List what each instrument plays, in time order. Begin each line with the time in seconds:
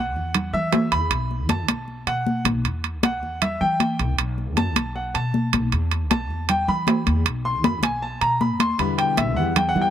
Already playing: upright bass B1, grand piano F#5
0.15 upright bass E2, high conga
0.34 high conga, low conga, high timbale
0.53 upright bass E3, grand piano E5, high conga, low conga
0.72 high conga, high timbale, low timbale
0.92 upright bass E2, grand piano B5, high timbale
1.10 upright bass B1, high conga, high timbale
1.31 high conga
1.49 upright bass F#2, grand piano A5, high conga, high timbale
1.68 upright bass B1, high conga, high timbale
1.88 high conga
2.07 upright bass B2, grand piano F#5, high conga, high timbale
2.27 high conga
2.45 upright bass B1, high conga, high timbale
2.64 upright bass E2, high conga, high timbale
2.84 high conga, high timbale
3.02 upright bass B1, grand piano F#5, high conga, high timbale
3.22 upright bass E2, high conga
3.42 grand piano E5, high conga, low conga, high timbale
3.61 upright bass E3, grand piano G5, high conga, low conga
3.80 high conga, high timbale
3.99 upright bass C2, high timbale
4.18 upright bass B1, high conga, high timbale
4.38 high conga
4.57 upright bass F#2, grand piano A5, high conga, high timbale
4.76 upright bass B1, high conga, high timbale
4.96 grand piano F#5, high conga
5.15 upright bass B2, grand piano A5, high conga, high timbale
5.34 high conga
5.53 upright bass B1, high conga, high timbale
5.72 upright bass E2, high conga, high timbale
5.91 high conga, high timbale
6.10 upright bass B1, grand piano A5, high conga, high timbale
6.30 upright bass E2, high conga
6.49 grand piano G5, high conga, low conga, high timbale
6.68 upright bass E3, grand piano B5, high conga, low conga
6.87 high conga, high timbale, low timbale
7.07 upright bass E2, high conga, high timbale
7.25 upright bass B1, high conga, high timbale
7.45 grand piano C6, high conga
7.64 upright bass F#2, grand piano B5, high conga, high timbale
7.83 upright bass B1, grand piano G#5, high conga, high timbale
8.02 grand piano A5, high conga
8.21 upright bass B2, grand piano A#5, high conga, high timbale
8.41 grand piano B5, high conga
8.59 upright bass D#2, grand piano C6, high conga, high timbale
8.78 upright bass E2, nylon-string guitar B2 D3 G3 B3 E4, grand piano B5, high conga, high timbale
8.98 grand piano G5, high conga, high timbale
9.17 upright bass B1, grand piano E5, high conga, high timbale
9.36 upright bass E2, nylon-string guitar G3 B3 E4, grand piano F#5, high conga
9.55 grand piano G5, muted nylon-string guitar stroke, high conga, low conga, high timbale
9.69 grand piano F#5
9.75 upright bass E3, nylon-string guitar G3 B3 E4, high conga, low conga
9.81 grand piano G5